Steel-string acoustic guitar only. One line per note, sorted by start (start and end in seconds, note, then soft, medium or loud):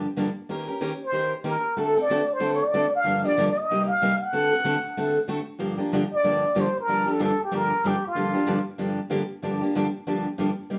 0.16 0.28 G2 medium
0.16 0.28 D3 medium
0.16 0.28 F3 medium
0.16 0.28 A#3 medium
0.16 0.29 D4 medium
0.16 0.28 G4 medium
0.49 0.67 D#3 medium
0.49 0.67 A#3 medium
0.49 0.68 C#4 medium
0.49 0.67 G4 medium
0.49 0.66 A#4 medium
0.68 0.80 C#4 soft
0.68 0.80 G4 soft
0.68 0.81 A#4 medium
0.81 0.92 D#3 medium
0.81 0.92 A#3 medium
0.81 0.92 C#4 medium
0.81 0.92 G4 medium
0.81 0.92 A#4 loud
1.12 1.32 D#3 medium
1.12 1.33 A#3 medium
1.12 1.33 C#4 medium
1.12 1.33 G4 medium
1.12 1.33 A#4 medium
1.44 1.55 D#3 medium
1.44 1.55 A#3 medium
1.44 1.55 C#4 medium
1.44 1.56 G4 medium
1.44 1.56 A#4 medium
1.77 1.95 D3 medium
1.77 1.95 A3 medium
1.77 1.95 C4 medium
1.77 1.95 F#4 medium
1.77 1.93 A4 medium
1.95 2.09 C4 soft
1.95 2.09 F#4 medium
1.95 2.08 A4 medium
2.10 2.20 D3 medium
2.10 2.20 A3 medium
2.10 2.21 C4 medium
2.10 2.21 F#4 medium
2.10 2.21 A4 loud
2.40 2.60 D3 medium
2.40 2.60 A3 medium
2.40 2.60 C4 medium
2.40 2.61 F#4 medium
2.40 2.61 A4 medium
2.74 2.84 D3 medium
2.74 2.84 A3 medium
2.74 2.84 C4 medium
2.74 2.84 F#4 medium
2.74 2.85 A4 loud
3.04 3.23 G2 medium
3.04 3.23 D3 medium
3.04 3.23 F3 medium
3.04 3.23 A#3 medium
3.04 3.23 D4 medium
3.04 3.23 G4 medium
3.24 3.36 F3 soft
3.24 3.37 A#3 soft
3.24 3.37 D4 soft
3.24 3.37 G4 medium
3.37 3.48 G2 medium
3.37 3.48 D3 loud
3.37 3.48 F3 medium
3.37 3.48 A#3 medium
3.37 3.48 D4 loud
3.37 3.48 G4 medium
3.71 3.89 C3 medium
3.71 3.90 G3 medium
3.71 3.90 A#3 medium
3.71 3.90 D#4 medium
3.71 3.90 G4 medium
4.02 4.12 C3 medium
4.02 4.12 G3 medium
4.02 4.12 A#3 medium
4.02 4.12 D#4 medium
4.02 4.12 G4 medium
4.33 4.51 D3 medium
4.33 4.51 A3 medium
4.33 4.51 C4 medium
4.33 4.51 F#4 medium
4.33 4.50 A4 medium
4.52 4.64 C4 soft
4.52 4.64 F#4 medium
4.52 4.64 A4 medium
4.65 4.75 D3 medium
4.65 4.75 A3 medium
4.65 4.76 C4 medium
4.65 4.76 F#4 medium
4.65 4.76 A4 loud
4.97 5.17 D3 medium
4.97 5.17 A3 medium
4.97 5.17 C4 medium
4.97 5.17 F#4 medium
4.97 5.17 A4 medium
5.28 5.39 D3 medium
5.28 5.39 A3 medium
5.28 5.39 C4 medium
5.28 5.39 F#4 medium
5.28 5.39 A4 medium
5.59 5.78 G2 medium
5.59 5.78 D3 medium
5.59 5.78 F3 medium
5.59 5.78 A#3 medium
5.59 5.77 D4 medium
5.59 5.76 G4 medium
5.77 5.92 F3 soft
5.77 5.92 A#3 medium
5.77 5.91 D4 medium
5.77 5.91 G4 medium
5.92 6.03 G2 medium
5.92 6.03 D3 medium
5.92 6.03 F3 medium
5.92 6.03 A#3 medium
5.92 6.04 D4 medium
5.92 6.04 G4 loud
6.23 6.43 G2 medium
6.23 6.44 D3 medium
6.23 6.44 F3 medium
6.23 6.44 A#3 medium
6.23 6.44 D4 medium
6.23 6.44 G4 medium
6.55 6.66 G2 medium
6.55 6.67 D3 medium
6.55 6.66 F3 medium
6.55 6.67 A#3 medium
6.55 6.67 D4 medium
6.55 6.67 G4 medium
6.88 7.06 G2 medium
6.88 7.06 D3 medium
6.88 7.07 F3 medium
6.88 7.07 A#3 medium
6.88 7.06 D4 medium
6.88 7.05 G4 medium
7.06 7.19 F3 soft
7.06 7.19 A#3 medium
7.06 7.19 D4 medium
7.06 7.19 G4 medium
7.19 7.30 G2 medium
7.19 7.30 D3 medium
7.19 7.30 F3 medium
7.19 7.31 A#3 medium
7.19 7.31 D4 medium
7.19 7.31 G4 loud
7.51 7.71 G2 medium
7.51 7.71 D3 medium
7.51 7.71 F3 medium
7.51 7.71 A#3 medium
7.51 7.72 D4 medium
7.51 7.72 G4 medium
7.84 7.94 G2 medium
7.84 7.95 D3 medium
7.84 7.95 F3 medium
7.84 7.95 A#3 medium
7.84 7.95 D4 medium
7.84 7.96 G4 loud
8.15 8.33 G2 medium
8.15 8.33 D3 medium
8.15 8.34 F3 medium
8.15 8.33 A#3 medium
8.15 8.33 D4 medium
8.15 8.32 G4 medium
8.33 8.46 F3 soft
8.33 8.46 A#3 medium
8.33 8.46 D4 medium
8.33 8.47 G4 medium
8.46 8.58 G2 medium
8.46 8.58 D3 medium
8.46 8.58 F3 medium
8.46 8.58 A#3 loud
8.46 8.58 D4 loud
8.46 8.58 G4 loud
8.78 8.98 G2 medium
8.78 8.98 D3 medium
8.78 8.99 F3 medium
8.78 8.99 A#3 medium
8.78 8.99 D4 medium
8.78 8.99 G4 medium
9.10 9.21 G2 medium
9.10 9.21 D3 medium
9.10 9.22 F3 medium
9.10 9.22 A#3 medium
9.10 9.22 D4 medium
9.10 9.22 G4 medium
9.42 9.61 G2 medium
9.42 9.61 D3 medium
9.42 9.61 F3 medium
9.42 9.61 A#3 medium
9.42 9.61 D4 medium
9.42 9.60 G4 medium
9.61 9.75 F3 soft
9.61 9.75 A#3 medium
9.61 9.75 D4 medium
9.61 9.74 G4 medium
9.75 9.86 G2 loud
9.75 9.86 D3 medium
9.75 9.86 F3 medium
9.75 9.86 A#3 loud
9.75 9.86 D4 loud
9.75 9.87 G4 loud
10.07 10.26 G2 medium
10.07 10.26 D3 medium
10.07 10.26 F3 medium
10.07 10.27 A#3 medium
10.07 10.27 D4 medium
10.07 10.27 G4 medium
10.38 10.49 G2 medium
10.38 10.49 D3 medium
10.38 10.49 F3 medium
10.38 10.50 A#3 medium
10.38 10.50 D4 medium
10.38 10.50 G4 medium
10.70 10.79 C3 medium
10.70 10.79 G3 medium
10.70 10.79 A#3 medium
10.70 10.79 D#4 medium
10.70 10.79 G4 medium